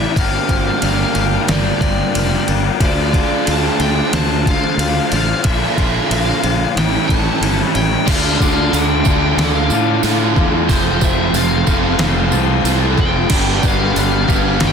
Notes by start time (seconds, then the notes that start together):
Already playing: A2 D3 E3 A3 D4 E4 A4 D5 E5 A5 D6
0.15 G1 G2 D3 F3 G3 F4 A#4 F5 G5, kick, ride
0.20 A#3 D4 G4
0.49 G1 F3 A#3 D4 G4, kick, ride
0.53 G3
0.82 G1 G3 A#3 D4 G4 F5, ride
1.15 G1 G3 A#3 D4 G4, ride
1.47 G1 G2 D3 F3 G3 A#3 D4 G4 D5, snare, ride
1.81 G1 F3 G3 A#3 D4 G4 D5, kick, ride
2.15 F1 G3 A#3 D4, ride
2.19 G4
2.46 G1 G3 A#3 D4 G4, ride
2.79 D2 D3 F3 A3 D4 F4 C5 A5, kick, ride
2.84 D5
3.13 F3 A3 D4 F4, kick, ride
3.46 D2 D3 A3 C4 D4 F4 A5, ride
3.79 D2 A3 D4 F4 G5, ride
4.12 D2 D3 F3 A3 D4 F4 A5, snare, ride
4.46 F3 A3 D4 F4 F5, kick, ride
4.64 snare
4.77 D2 D3 A3 C4 D4 F4, ride
5.10 A1 D4 F4 F5, ride
5.15 A3
5.43 A#1 A#2 D3 A#3 D4 E5, kick, ride
5.47 F4 A#5
5.76 A#1 F3 A#3 D4 F4, kick, ride
6.08 A#1 D3 A#3 D4 F4 E5, ride
6.22 F5
6.42 A#1 A#3 C4 D4 F4, ride
6.75 A1 A2 E3 G3 C#4 E4 G5, snare, ride
6.80 E4 A4 G5 C#6
7.07 A1 G3 C#4 E4 A5, kick, ride
7.41 G1 E3 G3 C#4 E4, ride
7.74 A1 C#4 E4 G5, ride
7.78 G3
8.06 D2 D3 A3 D4 F4 A4 D5 F5 D6, kick, open hi-hat, crash, tambourine
8.11 A4
8.40 D2 F4 A4 F5, kick, tambourine
8.45 D4
8.72 D2 D3 A3 D4 F4 G5, open hi-hat, tambourine
8.77 A4
9.05 D2 D3 A3 D4 F4 A4, kick, tambourine
9.09 D4
9.37 D2 D3 A3 A4 F5, snare, open hi-hat, tambourine
9.42 D4
9.70 A2 A4, tambourine
9.74 D4 F4
10.03 A2 D3 A3 D4 F4, open hi-hat, tambourine
10.07 A4
10.36 E2 F4, kick, snare
10.68 F1 F2 C3 F3 A3 A4 C5 C6, kick, open hi-hat, tambourine
10.72 C4 F4 A4
11.01 F1 C4 F4 A4 E5, kick, tambourine
11.33 F1 A3 C4 F4, open hi-hat, tambourine
11.37 A4 F5
11.67 F1 F2 C3 F3 A3 C4 F4 A4, kick, tambourine
11.71 C4
11.99 F1 F2 C3 F3 A4, snare, open hi-hat, tambourine
12.32 C2 C4 F4 A4, tambourine
12.64 C2 F2 C3 F3 A3 C4 F4 A4, open hi-hat, tambourine
12.98 F1 F4 G5, kick, snare
13.29 G1 G2 D3 G3 B3 D4 G4 G5 B5, kick, tambourine, crash
13.33 G3 B4 D5
13.63 G1 B3 D4 B4, kick, tambourine
13.67 F5
13.95 G1 G3 B3 D4 B4 F5, open hi-hat, tambourine
14.28 G1 G2 D3 G3 B3 G4 B4, kick, tambourine
14.32 D4
14.60 G1 G2 D3 G3 A4, snare, open hi-hat, tambourine
14.67 G5